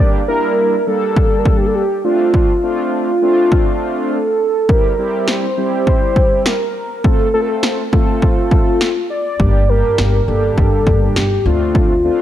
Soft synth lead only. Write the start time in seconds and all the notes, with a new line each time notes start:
Already playing: D5
0.28 A#4
0.87 A4
1.39 A#4
1.48 A4
1.57 G4
1.66 A4
1.75 G4
2.05 F4
4.10 A4
4.69 A#4
5.28 C5
5.87 C5
6.46 A#4
7.04 A4
7.34 A4
7.41 A#4
7.48 A4
7.93 F4
9.10 D5
9.69 A#4
10.28 A4
11.16 G4
11.46 F4